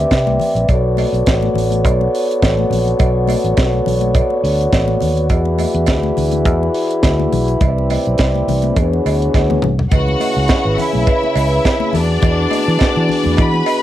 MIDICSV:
0, 0, Header, 1, 5, 480
1, 0, Start_track
1, 0, Tempo, 577478
1, 569, Time_signature, 4, 2, 24, 8
1, 11491, End_track
2, 0, Start_track
2, 0, Title_t, "String section"
2, 0, Program_c, 0, 48
2, 8243, Note_on_c, 0, 66, 71
2, 8247, Note_on_c, 0, 78, 73
2, 8950, Note_off_c, 0, 66, 0
2, 8952, Note_off_c, 0, 78, 0
2, 8960, Note_on_c, 0, 64, 77
2, 8964, Note_on_c, 0, 76, 80
2, 9904, Note_off_c, 0, 64, 0
2, 9906, Note_off_c, 0, 76, 0
2, 9929, Note_on_c, 0, 62, 82
2, 9929, Note_on_c, 0, 74, 95
2, 11104, Note_off_c, 0, 62, 0
2, 11104, Note_off_c, 0, 74, 0
2, 11123, Note_on_c, 0, 83, 91
2, 11124, Note_on_c, 0, 71, 82
2, 11491, Note_off_c, 0, 71, 0
2, 11491, Note_off_c, 0, 83, 0
2, 11491, End_track
3, 0, Start_track
3, 0, Title_t, "French horn section"
3, 0, Program_c, 1, 60
3, 0, Note_on_c, 1, 60, 71
3, 0, Note_on_c, 1, 67, 68
3, 0, Note_on_c, 1, 71, 70
3, 0, Note_on_c, 1, 74, 81
3, 0, Note_on_c, 1, 76, 79
3, 544, Note_off_c, 1, 67, 0
3, 545, Note_off_c, 1, 60, 0
3, 545, Note_off_c, 1, 71, 0
3, 549, Note_off_c, 1, 76, 0
3, 566, Note_on_c, 1, 59, 73
3, 568, Note_on_c, 1, 73, 71
3, 572, Note_on_c, 1, 66, 70
3, 578, Note_on_c, 1, 69, 63
3, 4369, Note_off_c, 1, 59, 0
3, 4370, Note_off_c, 1, 73, 0
3, 4375, Note_off_c, 1, 69, 0
3, 4413, Note_on_c, 1, 52, 75
3, 4415, Note_on_c, 1, 68, 68
3, 4421, Note_on_c, 1, 64, 70
3, 6288, Note_off_c, 1, 74, 0
3, 6292, Note_off_c, 1, 66, 0
3, 6309, Note_off_c, 1, 52, 0
3, 6310, Note_off_c, 1, 68, 0
3, 6342, Note_on_c, 1, 74, 71
3, 6345, Note_on_c, 1, 48, 79
3, 6345, Note_on_c, 1, 60, 71
3, 6346, Note_on_c, 1, 71, 65
3, 7264, Note_off_c, 1, 64, 0
3, 7284, Note_off_c, 1, 74, 0
3, 7285, Note_off_c, 1, 48, 0
3, 7285, Note_off_c, 1, 60, 0
3, 7285, Note_off_c, 1, 71, 0
3, 7294, Note_on_c, 1, 73, 84
3, 7298, Note_on_c, 1, 66, 72
3, 7298, Note_on_c, 1, 68, 71
3, 7299, Note_on_c, 1, 52, 68
3, 7299, Note_on_c, 1, 59, 72
3, 7299, Note_on_c, 1, 62, 66
3, 8103, Note_off_c, 1, 52, 0
3, 8103, Note_off_c, 1, 59, 0
3, 8103, Note_off_c, 1, 62, 0
3, 8103, Note_off_c, 1, 66, 0
3, 8103, Note_off_c, 1, 68, 0
3, 8103, Note_off_c, 1, 73, 0
3, 8244, Note_on_c, 1, 71, 77
3, 8248, Note_on_c, 1, 61, 70
3, 8252, Note_on_c, 1, 49, 77
3, 8253, Note_on_c, 1, 68, 69
3, 8257, Note_on_c, 1, 64, 65
3, 9909, Note_off_c, 1, 71, 0
3, 9911, Note_off_c, 1, 61, 0
3, 9913, Note_off_c, 1, 49, 0
3, 9915, Note_off_c, 1, 64, 0
3, 9925, Note_on_c, 1, 66, 68
3, 9927, Note_on_c, 1, 59, 61
3, 9929, Note_on_c, 1, 52, 62
3, 9929, Note_on_c, 1, 62, 63
3, 11491, Note_off_c, 1, 52, 0
3, 11491, Note_off_c, 1, 59, 0
3, 11491, Note_off_c, 1, 62, 0
3, 11491, Note_off_c, 1, 66, 0
3, 11491, Note_off_c, 1, 68, 0
3, 11491, End_track
4, 0, Start_track
4, 0, Title_t, "Fingered electric bass"
4, 0, Program_c, 2, 33
4, 96, Note_on_c, 2, 48, 94
4, 197, Note_off_c, 2, 48, 0
4, 224, Note_on_c, 2, 36, 86
4, 306, Note_off_c, 2, 36, 0
4, 457, Note_on_c, 2, 34, 73
4, 541, Note_off_c, 2, 34, 0
4, 573, Note_on_c, 2, 35, 106
4, 860, Note_off_c, 2, 35, 0
4, 937, Note_on_c, 2, 35, 77
4, 1021, Note_off_c, 2, 35, 0
4, 1055, Note_on_c, 2, 33, 86
4, 1238, Note_off_c, 2, 33, 0
4, 1282, Note_on_c, 2, 33, 72
4, 1537, Note_off_c, 2, 33, 0
4, 1537, Note_on_c, 2, 35, 86
4, 1718, Note_off_c, 2, 35, 0
4, 2018, Note_on_c, 2, 33, 91
4, 2198, Note_off_c, 2, 33, 0
4, 2246, Note_on_c, 2, 34, 85
4, 2431, Note_off_c, 2, 34, 0
4, 2493, Note_on_c, 2, 35, 104
4, 2779, Note_off_c, 2, 35, 0
4, 2861, Note_on_c, 2, 33, 92
4, 2942, Note_off_c, 2, 33, 0
4, 2974, Note_on_c, 2, 35, 80
4, 3156, Note_off_c, 2, 35, 0
4, 3206, Note_on_c, 2, 35, 65
4, 3494, Note_off_c, 2, 35, 0
4, 3688, Note_on_c, 2, 38, 89
4, 3872, Note_off_c, 2, 38, 0
4, 3930, Note_on_c, 2, 33, 81
4, 4113, Note_off_c, 2, 33, 0
4, 4167, Note_on_c, 2, 39, 87
4, 4403, Note_off_c, 2, 39, 0
4, 4403, Note_on_c, 2, 40, 101
4, 4692, Note_off_c, 2, 40, 0
4, 4774, Note_on_c, 2, 40, 93
4, 4886, Note_off_c, 2, 40, 0
4, 4886, Note_on_c, 2, 38, 85
4, 5070, Note_off_c, 2, 38, 0
4, 5133, Note_on_c, 2, 38, 80
4, 5365, Note_off_c, 2, 38, 0
4, 5365, Note_on_c, 2, 40, 92
4, 5550, Note_off_c, 2, 40, 0
4, 5848, Note_on_c, 2, 38, 82
4, 6032, Note_off_c, 2, 38, 0
4, 6086, Note_on_c, 2, 35, 94
4, 6270, Note_off_c, 2, 35, 0
4, 6325, Note_on_c, 2, 36, 109
4, 6614, Note_off_c, 2, 36, 0
4, 6708, Note_on_c, 2, 35, 83
4, 6786, Note_off_c, 2, 35, 0
4, 6812, Note_on_c, 2, 36, 76
4, 6994, Note_off_c, 2, 36, 0
4, 7046, Note_on_c, 2, 36, 77
4, 7230, Note_off_c, 2, 36, 0
4, 7285, Note_on_c, 2, 40, 92
4, 7470, Note_off_c, 2, 40, 0
4, 7528, Note_on_c, 2, 38, 89
4, 7712, Note_off_c, 2, 38, 0
4, 7769, Note_on_c, 2, 38, 82
4, 7953, Note_off_c, 2, 38, 0
4, 8004, Note_on_c, 2, 36, 80
4, 8190, Note_off_c, 2, 36, 0
4, 8245, Note_on_c, 2, 37, 90
4, 8430, Note_off_c, 2, 37, 0
4, 8616, Note_on_c, 2, 37, 87
4, 8699, Note_off_c, 2, 37, 0
4, 8854, Note_on_c, 2, 32, 86
4, 8938, Note_off_c, 2, 32, 0
4, 9101, Note_on_c, 2, 35, 82
4, 9182, Note_off_c, 2, 35, 0
4, 9439, Note_on_c, 2, 37, 87
4, 9627, Note_off_c, 2, 37, 0
4, 9925, Note_on_c, 2, 40, 87
4, 10111, Note_off_c, 2, 40, 0
4, 10164, Note_on_c, 2, 40, 100
4, 10350, Note_off_c, 2, 40, 0
4, 10540, Note_on_c, 2, 52, 93
4, 10622, Note_off_c, 2, 52, 0
4, 10779, Note_on_c, 2, 52, 81
4, 10861, Note_off_c, 2, 52, 0
4, 11018, Note_on_c, 2, 40, 90
4, 11101, Note_off_c, 2, 40, 0
4, 11128, Note_on_c, 2, 52, 99
4, 11313, Note_off_c, 2, 52, 0
4, 11491, End_track
5, 0, Start_track
5, 0, Title_t, "Drums"
5, 90, Note_on_c, 9, 56, 79
5, 92, Note_on_c, 9, 36, 91
5, 97, Note_on_c, 9, 38, 103
5, 104, Note_on_c, 9, 42, 58
5, 173, Note_off_c, 9, 56, 0
5, 175, Note_off_c, 9, 36, 0
5, 180, Note_off_c, 9, 38, 0
5, 187, Note_off_c, 9, 42, 0
5, 225, Note_on_c, 9, 62, 35
5, 225, Note_on_c, 9, 63, 68
5, 308, Note_off_c, 9, 62, 0
5, 308, Note_off_c, 9, 63, 0
5, 328, Note_on_c, 9, 64, 82
5, 340, Note_on_c, 9, 46, 65
5, 411, Note_off_c, 9, 64, 0
5, 424, Note_off_c, 9, 46, 0
5, 468, Note_on_c, 9, 42, 44
5, 551, Note_off_c, 9, 42, 0
5, 569, Note_on_c, 9, 56, 61
5, 571, Note_on_c, 9, 36, 110
5, 574, Note_on_c, 9, 42, 53
5, 653, Note_off_c, 9, 56, 0
5, 654, Note_off_c, 9, 36, 0
5, 657, Note_off_c, 9, 42, 0
5, 807, Note_on_c, 9, 63, 74
5, 816, Note_on_c, 9, 56, 65
5, 820, Note_on_c, 9, 46, 70
5, 890, Note_off_c, 9, 63, 0
5, 899, Note_off_c, 9, 56, 0
5, 904, Note_off_c, 9, 46, 0
5, 950, Note_on_c, 9, 42, 40
5, 1033, Note_off_c, 9, 42, 0
5, 1051, Note_on_c, 9, 42, 65
5, 1054, Note_on_c, 9, 56, 79
5, 1056, Note_on_c, 9, 36, 126
5, 1062, Note_on_c, 9, 38, 123
5, 1134, Note_off_c, 9, 42, 0
5, 1137, Note_off_c, 9, 56, 0
5, 1139, Note_off_c, 9, 36, 0
5, 1145, Note_off_c, 9, 38, 0
5, 1185, Note_on_c, 9, 62, 38
5, 1185, Note_on_c, 9, 63, 55
5, 1268, Note_off_c, 9, 62, 0
5, 1268, Note_off_c, 9, 63, 0
5, 1293, Note_on_c, 9, 64, 83
5, 1313, Note_on_c, 9, 46, 66
5, 1376, Note_off_c, 9, 64, 0
5, 1396, Note_off_c, 9, 46, 0
5, 1421, Note_on_c, 9, 63, 74
5, 1429, Note_on_c, 9, 42, 48
5, 1504, Note_off_c, 9, 63, 0
5, 1512, Note_off_c, 9, 42, 0
5, 1535, Note_on_c, 9, 36, 99
5, 1535, Note_on_c, 9, 56, 72
5, 1542, Note_on_c, 9, 42, 61
5, 1618, Note_off_c, 9, 36, 0
5, 1618, Note_off_c, 9, 56, 0
5, 1625, Note_off_c, 9, 42, 0
5, 1670, Note_on_c, 9, 62, 37
5, 1754, Note_off_c, 9, 62, 0
5, 1784, Note_on_c, 9, 46, 65
5, 1867, Note_off_c, 9, 46, 0
5, 1921, Note_on_c, 9, 42, 47
5, 2004, Note_off_c, 9, 42, 0
5, 2014, Note_on_c, 9, 56, 79
5, 2015, Note_on_c, 9, 36, 104
5, 2022, Note_on_c, 9, 38, 116
5, 2025, Note_on_c, 9, 62, 39
5, 2030, Note_on_c, 9, 42, 62
5, 2097, Note_off_c, 9, 56, 0
5, 2098, Note_off_c, 9, 36, 0
5, 2106, Note_off_c, 9, 38, 0
5, 2108, Note_off_c, 9, 62, 0
5, 2113, Note_off_c, 9, 42, 0
5, 2147, Note_on_c, 9, 63, 70
5, 2230, Note_off_c, 9, 63, 0
5, 2251, Note_on_c, 9, 64, 80
5, 2265, Note_on_c, 9, 46, 62
5, 2334, Note_off_c, 9, 64, 0
5, 2348, Note_off_c, 9, 46, 0
5, 2390, Note_on_c, 9, 42, 43
5, 2473, Note_off_c, 9, 42, 0
5, 2486, Note_on_c, 9, 62, 32
5, 2489, Note_on_c, 9, 56, 74
5, 2492, Note_on_c, 9, 36, 112
5, 2498, Note_on_c, 9, 42, 53
5, 2569, Note_off_c, 9, 62, 0
5, 2572, Note_off_c, 9, 56, 0
5, 2575, Note_off_c, 9, 36, 0
5, 2581, Note_off_c, 9, 42, 0
5, 2722, Note_on_c, 9, 63, 72
5, 2731, Note_on_c, 9, 56, 67
5, 2740, Note_on_c, 9, 46, 69
5, 2805, Note_off_c, 9, 63, 0
5, 2814, Note_off_c, 9, 56, 0
5, 2823, Note_off_c, 9, 46, 0
5, 2866, Note_on_c, 9, 42, 39
5, 2949, Note_off_c, 9, 42, 0
5, 2967, Note_on_c, 9, 56, 80
5, 2969, Note_on_c, 9, 42, 64
5, 2973, Note_on_c, 9, 36, 124
5, 2973, Note_on_c, 9, 62, 34
5, 2979, Note_on_c, 9, 38, 126
5, 3050, Note_off_c, 9, 56, 0
5, 3052, Note_off_c, 9, 42, 0
5, 3056, Note_off_c, 9, 36, 0
5, 3056, Note_off_c, 9, 62, 0
5, 3062, Note_off_c, 9, 38, 0
5, 3103, Note_on_c, 9, 63, 55
5, 3186, Note_off_c, 9, 63, 0
5, 3209, Note_on_c, 9, 64, 80
5, 3224, Note_on_c, 9, 46, 69
5, 3292, Note_off_c, 9, 64, 0
5, 3307, Note_off_c, 9, 46, 0
5, 3333, Note_on_c, 9, 42, 49
5, 3334, Note_on_c, 9, 63, 72
5, 3416, Note_off_c, 9, 42, 0
5, 3417, Note_off_c, 9, 63, 0
5, 3446, Note_on_c, 9, 56, 71
5, 3447, Note_on_c, 9, 36, 115
5, 3448, Note_on_c, 9, 62, 33
5, 3451, Note_on_c, 9, 42, 61
5, 3529, Note_off_c, 9, 56, 0
5, 3531, Note_off_c, 9, 36, 0
5, 3531, Note_off_c, 9, 62, 0
5, 3534, Note_off_c, 9, 42, 0
5, 3577, Note_on_c, 9, 62, 34
5, 3660, Note_off_c, 9, 62, 0
5, 3695, Note_on_c, 9, 46, 72
5, 3779, Note_off_c, 9, 46, 0
5, 3831, Note_on_c, 9, 42, 43
5, 3914, Note_off_c, 9, 42, 0
5, 3927, Note_on_c, 9, 56, 80
5, 3929, Note_on_c, 9, 36, 107
5, 3931, Note_on_c, 9, 62, 43
5, 3932, Note_on_c, 9, 38, 102
5, 3939, Note_on_c, 9, 42, 61
5, 4011, Note_off_c, 9, 56, 0
5, 4012, Note_off_c, 9, 36, 0
5, 4014, Note_off_c, 9, 62, 0
5, 4015, Note_off_c, 9, 38, 0
5, 4022, Note_off_c, 9, 42, 0
5, 4054, Note_on_c, 9, 62, 31
5, 4054, Note_on_c, 9, 63, 66
5, 4137, Note_off_c, 9, 62, 0
5, 4137, Note_off_c, 9, 63, 0
5, 4159, Note_on_c, 9, 64, 74
5, 4170, Note_on_c, 9, 46, 67
5, 4242, Note_off_c, 9, 64, 0
5, 4253, Note_off_c, 9, 46, 0
5, 4299, Note_on_c, 9, 42, 43
5, 4382, Note_off_c, 9, 42, 0
5, 4402, Note_on_c, 9, 42, 53
5, 4404, Note_on_c, 9, 36, 104
5, 4408, Note_on_c, 9, 56, 64
5, 4485, Note_off_c, 9, 42, 0
5, 4488, Note_off_c, 9, 36, 0
5, 4491, Note_off_c, 9, 56, 0
5, 4533, Note_on_c, 9, 62, 35
5, 4616, Note_off_c, 9, 62, 0
5, 4640, Note_on_c, 9, 63, 62
5, 4643, Note_on_c, 9, 56, 66
5, 4649, Note_on_c, 9, 46, 68
5, 4723, Note_off_c, 9, 63, 0
5, 4726, Note_off_c, 9, 56, 0
5, 4732, Note_off_c, 9, 46, 0
5, 4775, Note_on_c, 9, 42, 42
5, 4858, Note_off_c, 9, 42, 0
5, 4874, Note_on_c, 9, 56, 83
5, 4878, Note_on_c, 9, 42, 63
5, 4887, Note_on_c, 9, 36, 118
5, 4887, Note_on_c, 9, 62, 34
5, 4888, Note_on_c, 9, 38, 121
5, 4957, Note_off_c, 9, 56, 0
5, 4961, Note_off_c, 9, 42, 0
5, 4970, Note_off_c, 9, 36, 0
5, 4970, Note_off_c, 9, 62, 0
5, 4971, Note_off_c, 9, 38, 0
5, 5015, Note_on_c, 9, 62, 37
5, 5015, Note_on_c, 9, 63, 58
5, 5098, Note_off_c, 9, 62, 0
5, 5098, Note_off_c, 9, 63, 0
5, 5127, Note_on_c, 9, 64, 76
5, 5133, Note_on_c, 9, 46, 64
5, 5211, Note_off_c, 9, 64, 0
5, 5216, Note_off_c, 9, 46, 0
5, 5249, Note_on_c, 9, 42, 53
5, 5257, Note_on_c, 9, 63, 72
5, 5332, Note_off_c, 9, 42, 0
5, 5340, Note_off_c, 9, 63, 0
5, 5363, Note_on_c, 9, 56, 63
5, 5365, Note_on_c, 9, 36, 112
5, 5366, Note_on_c, 9, 42, 60
5, 5446, Note_off_c, 9, 56, 0
5, 5448, Note_off_c, 9, 36, 0
5, 5449, Note_off_c, 9, 42, 0
5, 5509, Note_on_c, 9, 62, 38
5, 5592, Note_off_c, 9, 62, 0
5, 5605, Note_on_c, 9, 46, 70
5, 5689, Note_off_c, 9, 46, 0
5, 5740, Note_on_c, 9, 42, 47
5, 5824, Note_off_c, 9, 42, 0
5, 5842, Note_on_c, 9, 38, 104
5, 5845, Note_on_c, 9, 36, 104
5, 5849, Note_on_c, 9, 42, 58
5, 5849, Note_on_c, 9, 56, 77
5, 5925, Note_off_c, 9, 38, 0
5, 5929, Note_off_c, 9, 36, 0
5, 5932, Note_off_c, 9, 42, 0
5, 5932, Note_off_c, 9, 56, 0
5, 5980, Note_on_c, 9, 63, 75
5, 6063, Note_off_c, 9, 63, 0
5, 6088, Note_on_c, 9, 46, 67
5, 6089, Note_on_c, 9, 64, 85
5, 6171, Note_off_c, 9, 46, 0
5, 6172, Note_off_c, 9, 64, 0
5, 6218, Note_on_c, 9, 42, 42
5, 6301, Note_off_c, 9, 42, 0
5, 6322, Note_on_c, 9, 42, 46
5, 6323, Note_on_c, 9, 62, 33
5, 6323, Note_on_c, 9, 64, 63
5, 6325, Note_on_c, 9, 36, 110
5, 6332, Note_on_c, 9, 56, 64
5, 6405, Note_off_c, 9, 42, 0
5, 6406, Note_off_c, 9, 62, 0
5, 6406, Note_off_c, 9, 64, 0
5, 6408, Note_off_c, 9, 36, 0
5, 6415, Note_off_c, 9, 56, 0
5, 6469, Note_on_c, 9, 62, 34
5, 6552, Note_off_c, 9, 62, 0
5, 6566, Note_on_c, 9, 46, 71
5, 6569, Note_on_c, 9, 56, 67
5, 6570, Note_on_c, 9, 63, 63
5, 6649, Note_off_c, 9, 46, 0
5, 6652, Note_off_c, 9, 56, 0
5, 6653, Note_off_c, 9, 63, 0
5, 6692, Note_on_c, 9, 42, 38
5, 6775, Note_off_c, 9, 42, 0
5, 6797, Note_on_c, 9, 42, 63
5, 6805, Note_on_c, 9, 56, 80
5, 6807, Note_on_c, 9, 36, 118
5, 6808, Note_on_c, 9, 38, 117
5, 6881, Note_off_c, 9, 42, 0
5, 6888, Note_off_c, 9, 56, 0
5, 6891, Note_off_c, 9, 36, 0
5, 6891, Note_off_c, 9, 38, 0
5, 6944, Note_on_c, 9, 62, 34
5, 6944, Note_on_c, 9, 63, 52
5, 7027, Note_off_c, 9, 62, 0
5, 7027, Note_off_c, 9, 63, 0
5, 7052, Note_on_c, 9, 46, 59
5, 7056, Note_on_c, 9, 64, 78
5, 7135, Note_off_c, 9, 46, 0
5, 7139, Note_off_c, 9, 64, 0
5, 7166, Note_on_c, 9, 42, 45
5, 7178, Note_on_c, 9, 63, 77
5, 7249, Note_off_c, 9, 42, 0
5, 7261, Note_off_c, 9, 63, 0
5, 7284, Note_on_c, 9, 42, 58
5, 7286, Note_on_c, 9, 36, 110
5, 7287, Note_on_c, 9, 56, 64
5, 7368, Note_off_c, 9, 42, 0
5, 7370, Note_off_c, 9, 36, 0
5, 7370, Note_off_c, 9, 56, 0
5, 7426, Note_on_c, 9, 62, 38
5, 7509, Note_off_c, 9, 62, 0
5, 7530, Note_on_c, 9, 56, 75
5, 7535, Note_on_c, 9, 46, 66
5, 7614, Note_off_c, 9, 56, 0
5, 7618, Note_off_c, 9, 46, 0
5, 7666, Note_on_c, 9, 42, 42
5, 7749, Note_off_c, 9, 42, 0
5, 7767, Note_on_c, 9, 36, 99
5, 7767, Note_on_c, 9, 38, 47
5, 7771, Note_on_c, 9, 56, 87
5, 7850, Note_off_c, 9, 36, 0
5, 7850, Note_off_c, 9, 38, 0
5, 7854, Note_off_c, 9, 56, 0
5, 7897, Note_on_c, 9, 48, 64
5, 7901, Note_on_c, 9, 63, 73
5, 7980, Note_off_c, 9, 48, 0
5, 7985, Note_off_c, 9, 63, 0
5, 7999, Note_on_c, 9, 45, 85
5, 8011, Note_on_c, 9, 64, 89
5, 8082, Note_off_c, 9, 45, 0
5, 8094, Note_off_c, 9, 64, 0
5, 8139, Note_on_c, 9, 43, 77
5, 8222, Note_off_c, 9, 43, 0
5, 8241, Note_on_c, 9, 42, 57
5, 8241, Note_on_c, 9, 62, 34
5, 8241, Note_on_c, 9, 64, 61
5, 8244, Note_on_c, 9, 36, 107
5, 8245, Note_on_c, 9, 56, 71
5, 8324, Note_off_c, 9, 42, 0
5, 8324, Note_off_c, 9, 62, 0
5, 8324, Note_off_c, 9, 64, 0
5, 8327, Note_off_c, 9, 36, 0
5, 8329, Note_off_c, 9, 56, 0
5, 8382, Note_on_c, 9, 62, 33
5, 8465, Note_off_c, 9, 62, 0
5, 8479, Note_on_c, 9, 63, 67
5, 8483, Note_on_c, 9, 56, 66
5, 8486, Note_on_c, 9, 46, 69
5, 8562, Note_off_c, 9, 63, 0
5, 8566, Note_off_c, 9, 56, 0
5, 8569, Note_off_c, 9, 46, 0
5, 8711, Note_on_c, 9, 42, 59
5, 8719, Note_on_c, 9, 56, 78
5, 8721, Note_on_c, 9, 38, 126
5, 8724, Note_on_c, 9, 36, 123
5, 8726, Note_on_c, 9, 62, 36
5, 8794, Note_off_c, 9, 42, 0
5, 8802, Note_off_c, 9, 56, 0
5, 8804, Note_off_c, 9, 38, 0
5, 8808, Note_off_c, 9, 36, 0
5, 8809, Note_off_c, 9, 62, 0
5, 8963, Note_on_c, 9, 64, 85
5, 8971, Note_on_c, 9, 46, 68
5, 9046, Note_off_c, 9, 64, 0
5, 9054, Note_off_c, 9, 46, 0
5, 9087, Note_on_c, 9, 63, 67
5, 9170, Note_off_c, 9, 63, 0
5, 9200, Note_on_c, 9, 56, 64
5, 9203, Note_on_c, 9, 36, 103
5, 9206, Note_on_c, 9, 42, 62
5, 9206, Note_on_c, 9, 62, 35
5, 9283, Note_off_c, 9, 56, 0
5, 9287, Note_off_c, 9, 36, 0
5, 9289, Note_off_c, 9, 42, 0
5, 9289, Note_off_c, 9, 62, 0
5, 9339, Note_on_c, 9, 62, 33
5, 9422, Note_off_c, 9, 62, 0
5, 9438, Note_on_c, 9, 56, 78
5, 9448, Note_on_c, 9, 46, 67
5, 9521, Note_off_c, 9, 56, 0
5, 9531, Note_off_c, 9, 46, 0
5, 9685, Note_on_c, 9, 36, 94
5, 9685, Note_on_c, 9, 56, 89
5, 9687, Note_on_c, 9, 62, 36
5, 9688, Note_on_c, 9, 38, 93
5, 9696, Note_on_c, 9, 42, 61
5, 9768, Note_off_c, 9, 36, 0
5, 9769, Note_off_c, 9, 56, 0
5, 9771, Note_off_c, 9, 62, 0
5, 9772, Note_off_c, 9, 38, 0
5, 9779, Note_off_c, 9, 42, 0
5, 9808, Note_on_c, 9, 62, 34
5, 9808, Note_on_c, 9, 63, 73
5, 9891, Note_off_c, 9, 62, 0
5, 9891, Note_off_c, 9, 63, 0
5, 9915, Note_on_c, 9, 64, 81
5, 9930, Note_on_c, 9, 46, 63
5, 9998, Note_off_c, 9, 64, 0
5, 10013, Note_off_c, 9, 46, 0
5, 10157, Note_on_c, 9, 62, 33
5, 10157, Note_on_c, 9, 64, 66
5, 10163, Note_on_c, 9, 36, 107
5, 10163, Note_on_c, 9, 42, 54
5, 10164, Note_on_c, 9, 56, 65
5, 10240, Note_off_c, 9, 62, 0
5, 10240, Note_off_c, 9, 64, 0
5, 10246, Note_off_c, 9, 36, 0
5, 10246, Note_off_c, 9, 42, 0
5, 10247, Note_off_c, 9, 56, 0
5, 10395, Note_on_c, 9, 56, 67
5, 10398, Note_on_c, 9, 63, 73
5, 10413, Note_on_c, 9, 46, 65
5, 10478, Note_off_c, 9, 56, 0
5, 10481, Note_off_c, 9, 63, 0
5, 10496, Note_off_c, 9, 46, 0
5, 10630, Note_on_c, 9, 56, 83
5, 10642, Note_on_c, 9, 42, 62
5, 10648, Note_on_c, 9, 36, 125
5, 10653, Note_on_c, 9, 38, 123
5, 10713, Note_off_c, 9, 56, 0
5, 10725, Note_off_c, 9, 42, 0
5, 10731, Note_off_c, 9, 36, 0
5, 10736, Note_off_c, 9, 38, 0
5, 10773, Note_on_c, 9, 62, 37
5, 10857, Note_off_c, 9, 62, 0
5, 10880, Note_on_c, 9, 64, 79
5, 10900, Note_on_c, 9, 46, 71
5, 10963, Note_off_c, 9, 64, 0
5, 10984, Note_off_c, 9, 46, 0
5, 11002, Note_on_c, 9, 63, 80
5, 11085, Note_off_c, 9, 63, 0
5, 11114, Note_on_c, 9, 56, 63
5, 11121, Note_on_c, 9, 62, 33
5, 11124, Note_on_c, 9, 36, 118
5, 11128, Note_on_c, 9, 42, 59
5, 11197, Note_off_c, 9, 56, 0
5, 11204, Note_off_c, 9, 62, 0
5, 11207, Note_off_c, 9, 36, 0
5, 11211, Note_off_c, 9, 42, 0
5, 11253, Note_on_c, 9, 62, 39
5, 11336, Note_off_c, 9, 62, 0
5, 11356, Note_on_c, 9, 56, 85
5, 11368, Note_on_c, 9, 46, 67
5, 11439, Note_off_c, 9, 56, 0
5, 11451, Note_off_c, 9, 46, 0
5, 11491, End_track
0, 0, End_of_file